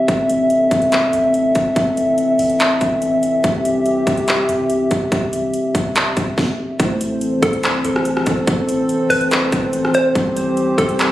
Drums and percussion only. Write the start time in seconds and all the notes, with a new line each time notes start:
0.08 kick, closed hi-hat
0.29 closed hi-hat
0.50 closed hi-hat
0.71 kick, closed hi-hat
0.82 closed hi-hat
0.92 clap, closed hi-hat
1.13 closed hi-hat
1.34 closed hi-hat
1.55 kick, closed hi-hat
1.76 kick, closed hi-hat
1.97 closed hi-hat
2.18 closed hi-hat
2.39 closed hi-hat, open hi-hat
2.50 closed hi-hat
2.60 clap, closed hi-hat
2.81 kick, closed hi-hat
3.02 closed hi-hat
3.23 closed hi-hat
3.44 kick, closed hi-hat
3.65 closed hi-hat
3.86 closed hi-hat
4.07 kick, closed hi-hat
4.17 closed hi-hat
4.28 clap, closed hi-hat
4.49 closed hi-hat
4.70 closed hi-hat
4.91 kick, closed hi-hat
5.12 kick, closed hi-hat
5.33 closed hi-hat
5.54 closed hi-hat
5.75 kick, closed hi-hat
5.96 clap, closed hi-hat
6.17 kick, closed hi-hat
6.38 kick, snare
6.80 kick, closed hi-hat
7.01 closed hi-hat
7.21 closed hi-hat
7.42 kick, closed hi-hat
7.53 closed hi-hat
7.63 clap, closed hi-hat
7.84 closed hi-hat
7.96 cross-stick
8.05 closed hi-hat
8.17 cross-stick
8.26 kick, closed hi-hat
8.47 kick, closed hi-hat
8.69 closed hi-hat
8.89 closed hi-hat
9.10 closed hi-hat, open hi-hat
9.21 closed hi-hat
9.31 clap, closed hi-hat
9.52 kick, closed hi-hat
9.73 closed hi-hat
9.85 cross-stick
9.94 closed hi-hat
10.15 kick, closed hi-hat
10.37 closed hi-hat
10.57 closed hi-hat
10.78 kick, closed hi-hat
10.89 closed hi-hat
10.99 clap, closed hi-hat